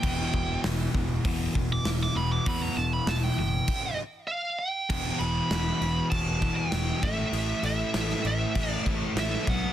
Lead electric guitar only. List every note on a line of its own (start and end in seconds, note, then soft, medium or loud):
0.00 0.60 G5 loud
1.73 1.86 D6 loud
2.03 2.17 D6 loud
2.17 2.31 B5 loud
2.32 2.46 D6 loud
2.48 2.62 B5 loud
2.62 2.77 A#5 loud
2.77 2.91 A5 medium
2.93 3.07 B5 loud
3.08 3.24 A5 loud
3.24 3.38 G5 loud
3.39 3.97 G5 loud
4.27 4.59 F5 medium
4.59 5.22 G5 loud
5.19 6.07 B5 loud
6.10 6.56 A5 loud
6.56 7.04 G5 medium
7.03 7.64 E5 medium
7.65 8.26 E5 medium
8.27 8.70 E5 medium
8.70 8.83 D5 medium
9.19 9.49 E5 medium
9.49 9.73 F#5 loud